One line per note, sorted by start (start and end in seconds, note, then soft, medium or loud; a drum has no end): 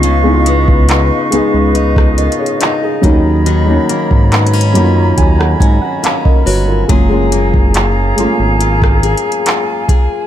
0.00 1.11 C#2 loud
0.00 3.12 C#3 medium
0.00 0.11 G#3 medium
0.00 0.12 B3 medium
0.00 0.46 C#4 medium
0.00 0.12 D#4 medium
0.00 0.04 F4 medium
0.00 0.13 F4 loud
0.00 2.81 B4 medium
0.00 6.61 D#5 medium
0.00 2.75 F5 medium
0.00 2.72 C#6 medium
0.00 closed hi-hat medium
0.04 2.16 F4 medium
0.23 1.02 G#3 medium
0.23 1.02 B3 medium
0.23 1.03 D#4 medium
0.23 0.32 E4 medium
0.33 1.07 F4 loud
0.46 1.32 B3 medium
0.46 closed hi-hat medium
0.68 kick medium
0.89 1.75 D#4 medium
0.89 clap loud
0.89 closed hi-hat medium
1.30 1.41 C#2 soft
1.30 2.55 G#3 medium
1.30 2.56 B3 medium
1.30 3.89 B3 medium
1.30 2.18 D#4 medium
1.30 2.19 G#4 medium
1.30 closed hi-hat medium
1.54 2.29 C#2 medium
1.75 2.60 D#4 medium
1.75 closed hi-hat medium
1.96 kick medium
1.96 cross-stick loud
2.18 3.12 F4 medium
2.18 2.39 A#4 medium
2.18 2.38 D#5 medium
2.18 closed hi-hat medium
2.32 closed hi-hat soft
2.39 2.80 G#4 medium
2.39 2.80 C#5 medium
2.46 closed hi-hat soft
2.61 4.32 D#4 medium
2.61 clap loud
2.61 closed hi-hat medium
2.82 3.04 D#4 medium
2.82 3.23 G#4 medium
3.01 3.79 D#2 medium
3.01 3.45 D#3 medium
3.01 3.54 F#3 medium
3.01 3.55 A#3 medium
3.01 3.55 C#4 medium
3.01 3.56 D#4 loud
3.01 6.85 C#5 medium
3.01 6.85 A#5 medium
3.01 6.85 B5 medium
3.01 kick loud
3.01 closed hi-hat medium
3.46 6.89 D#3 medium
3.46 5.60 F#4 medium
3.46 closed hi-hat medium
3.66 4.44 F#3 medium
3.66 4.45 A#3 medium
3.66 4.46 C#4 medium
3.66 4.46 D#4 medium
3.89 4.74 A#3 medium
3.89 closed hi-hat medium
4.11 4.77 G#2 medium
4.11 kick medium
4.32 4.53 B3 medium
4.32 clap loud
4.32 closed hi-hat soft
4.47 closed hi-hat medium
4.53 5.16 C#4 medium
4.61 closed hi-hat medium
4.73 5.13 F#2 medium
4.73 5.98 F#3 medium
4.73 5.99 A#3 medium
4.73 7.31 A#3 medium
4.73 5.99 C#4 medium
4.73 4.82 D#4 medium
4.73 4.95 B5 medium
4.73 closed hi-hat medium
4.83 6.03 F4 medium
4.96 5.16 A#5 medium
5.18 5.55 D#2 loud
5.18 6.03 C#4 medium
5.18 5.38 G#5 medium
5.18 kick medium
5.18 closed hi-hat medium
5.39 5.59 F#5 medium
5.39 cross-stick loud
5.60 5.79 G#2 medium
5.60 6.46 F#4 medium
5.60 5.80 G#5 medium
5.60 kick medium
5.60 closed hi-hat medium
5.82 6.02 F#5 medium
6.03 7.74 C#4 medium
6.03 6.23 F5 medium
6.03 clap loud
6.03 closed hi-hat medium
6.25 6.45 A#4 medium
6.25 6.45 D#5 medium
6.25 kick medium
6.46 6.84 G1 medium
6.46 6.89 F#4 medium
6.46 6.67 F#4 medium
6.46 6.67 B4 medium
6.46 6.86 C#5 medium
6.46 open hi-hat medium
6.68 6.90 F4 medium
6.68 7.09 A#4 medium
6.88 8.14 F#1 loud
6.88 10.27 F#3 medium
6.88 7.04 G#3 medium
6.88 7.04 A#3 medium
6.88 7.05 C#4 medium
6.88 7.06 F4 medium
6.88 10.01 G#4 medium
6.88 9.02 G#4 medium
6.88 10.10 F5 medium
6.88 10.27 G#5 medium
6.88 10.06 A#5 medium
6.88 kick loud
6.88 closed hi-hat medium
7.09 7.87 G#3 medium
7.09 7.88 A#3 medium
7.09 7.89 C#4 medium
7.09 7.89 F4 medium
7.32 8.17 A#3 medium
7.32 closed hi-hat medium
7.54 kick medium
7.74 8.60 F4 medium
7.74 clap loud
7.74 closed hi-hat medium
8.16 8.27 G#1 soft
8.16 9.41 G#3 medium
8.16 8.24 A3 medium
8.16 10.27 A#3 medium
8.16 9.42 C#4 medium
8.16 9.43 F4 medium
8.16 closed hi-hat medium
8.24 9.45 A#3 medium
8.40 9.15 G#1 medium
8.60 9.46 F4 medium
8.60 closed hi-hat medium
8.82 kick medium
8.82 cross-stick loud
9.03 9.88 G#4 medium
9.03 closed hi-hat medium
9.18 closed hi-hat soft
9.32 closed hi-hat soft
9.46 10.27 F4 medium
9.46 clap loud
9.46 closed hi-hat medium
9.89 10.27 G#4 medium
9.89 kick loud
9.89 closed hi-hat medium